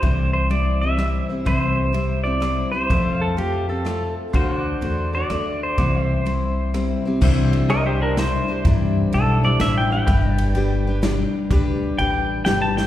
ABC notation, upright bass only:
X:1
M:3/4
L:1/8
Q:"Swing" 1/4=126
K:C
V:1 name="Upright bass" clef=bass
C,,6 | C,,6 | F,,6 | D,,2 E,,2 D,,2 |
C,,6 | C,,6 | G,,2 B,,,2 A,,,2 | G,,,6 |
D,,2 A,,,2 G,,,2 |]